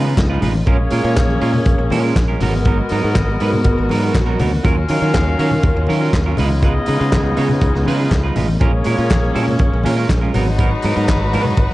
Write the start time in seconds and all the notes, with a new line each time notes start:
Already playing: C#3 G#3 B3 D#4 F4 B4
0.05 G#3 D#4 F4 B4
0.17 C#2, muted clean electric guitar stroke, kick, snare, clap, closed hi-hat
0.20 clap
0.30 G#3 D#4 F4 B4
0.41 A1 G#3 D#4 F4 B4, open hi-hat, muted conga, low conga
0.54 muted clean electric guitar stroke, high conga
0.66 A#1 G#3 A#3 C#4 F4 G#4 A#4 C#5, kick, closed hi-hat, muted conga
0.78 muted clean electric guitar stroke
0.91 A#2 G#3 C#4 F4 A#4, open hi-hat, muted conga
1.03 A#2 G#3 C#4 F4 A#4
1.16 A#1, muted clean electric guitar stroke, kick, snare, clap, closed hi-hat, muted conga, high conga
1.28 muted clean electric guitar stroke
1.40 A#2 G#3 C#4 F4 A#4, open hi-hat
1.53 muted clean electric guitar stroke, low conga
1.66 A#1, muted clean electric guitar stroke, kick, closed hi-hat, muted conga
1.78 A#1, muted clean electric guitar stroke
1.90 A#2 G#3 C#4 F4 A#4, open hi-hat, muted conga, high conga
2.03 G#3 C#4 F4 A#4
2.15 A#1, muted clean electric guitar stroke, kick, snare, clap, closed hi-hat
2.28 G#3 C#4 F4 A#4
2.39 G#1 F#3 B3 D#4 F#4 A#4 D#5, open hi-hat, muted conga, low conga
2.54 muted clean electric guitar stroke, high conga
2.65 F#3 B3 D#4 A#4, kick, closed hi-hat
2.79 muted clean electric guitar stroke
2.89 G#2 F#3 B3 D#4 A#4, open hi-hat
3.03 G#2 F#3 B3 D#4 A#4
3.15 G#1, muted clean electric guitar stroke, kick, snare, clap, muted conga, high conga
3.28 muted clean electric guitar stroke
3.40 G#2 F#3 B3 D#4 B4, open hi-hat
3.52 muted clean electric guitar stroke, low conga
3.64 G#1, muted clean electric guitar stroke, kick, closed hi-hat
3.77 G#1, muted clean electric guitar stroke
3.89 G#2 F#3 B3 D#4 A#4, open hi-hat, high conga
4.02 F#3 B3 D#4 A#4
4.15 A#1, muted clean electric guitar stroke, kick, snare, clap, closed hi-hat, muted conga
4.26 F#3 B3 D#4 A#4
4.39 D2 F#3 B3 D#4 A#4, open hi-hat, muted conga, low conga
4.52 muted clean electric guitar stroke, high conga
4.64 D#2 D#3 F#3 C#4 F4 A#4 F5, kick, closed hi-hat, muted conga
4.77 muted clean electric guitar stroke
4.89 D#3 F#3 C#4 F4 A#4, open hi-hat
5.01 D#3 F#3 C#4 F4 A#4
5.14 D#2, kick, snare, clap, closed hi-hat, muted conga, high conga
5.27 muted clean electric guitar stroke
5.39 D#3 F#3 C#4 F4 A#4, open hi-hat
5.51 muted clean electric guitar stroke, low conga
5.63 D#2, muted clean electric guitar stroke, kick, closed hi-hat, muted conga
5.76 D#2, muted clean electric guitar stroke
5.87 D#3 F#3 C#4 F4 A#4, open hi-hat, muted conga, high conga
6.01 F#3 C#4 F4 A#4
6.13 D#2, muted clean electric guitar stroke, kick, snare, clap, closed hi-hat, muted conga
6.26 F#3 C#4 F4 A#4
6.37 C#2 C#3 G#3 B3 D#4 F4 G#4 B4 D#5, open hi-hat, muted conga, low conga
6.50 muted clean electric guitar stroke, high conga
6.62 G#3 D#4 F4 B4, kick, closed hi-hat
6.75 muted clean electric guitar stroke
6.86 C#3 G#3 D#4 F4 B4, open hi-hat, muted conga
6.99 C#3 G#3 D#4 F4 B4
7.12 C#2, muted clean electric guitar stroke, kick, snare, clap, high conga
7.24 muted clean electric guitar stroke
7.37 C#3 G#3 D#4 F4 C#5, open hi-hat, muted conga
7.49 muted clean electric guitar stroke, low conga
7.61 C#2, muted clean electric guitar stroke, kick, closed hi-hat
7.74 C#2, muted clean electric guitar stroke, snare
7.86 C#3 G#3 D#4 F4 B4, open hi-hat, muted conga, high conga
7.98 G#3 D#4 F4 B4
8.11 C#2, kick, snare, clap, muted conga
8.23 G#3 D#4 F4 B4
8.36 A1 G#3 D#4 F4 B4, open hi-hat, muted conga, low conga
8.48 muted clean electric guitar stroke, high conga
8.60 A#1 G#3 A#3 C#4 F4 G#4 A#4 C#5, kick, closed hi-hat
8.73 muted clean electric guitar stroke
8.84 A#2 G#3 C#4 F4 A#4, open hi-hat, muted conga
8.97 A#2 G#3 C#4 F4 A#4
9.10 A#1, muted clean electric guitar stroke, kick, snare, clap, closed hi-hat, muted conga, high conga
9.23 muted clean electric guitar stroke
9.34 A#2 G#3 C#4 F4 A#4, open hi-hat, muted conga
9.47 muted clean electric guitar stroke, low conga
9.59 A#1, muted clean electric guitar stroke, kick, closed hi-hat, muted conga
9.72 A#1, muted clean electric guitar stroke
9.84 A#2 G#3 C#4 F4 A#4, open hi-hat, muted conga, high conga
9.97 G#3 C#4 F4 A#4
10.09 A#1, muted clean electric guitar stroke, kick, snare, clap, closed hi-hat
10.21 G#3 C#4 F4 A#4
10.34 G#1 F#3 B3 D#4 F#4 A#4 B4 A#5, open hi-hat, muted conga, low conga
10.47 muted clean electric guitar stroke, high conga
10.59 F#3 B3 D#4 A#4, kick, closed hi-hat
10.71 muted clean electric guitar stroke
10.82 G#2 F#3 B3 D#4 A#4, open hi-hat, muted conga
10.96 G#2 F#3 B3 D#4 A#4
11.08 G#1, kick, snare, clap, closed hi-hat, muted conga, high conga
11.21 muted clean electric guitar stroke
11.33 G#2 F#3 B3 D#4 B4, open hi-hat, muted conga
11.45 muted clean electric guitar stroke, low conga
11.57 G#1, muted clean electric guitar stroke, kick, closed hi-hat, muted conga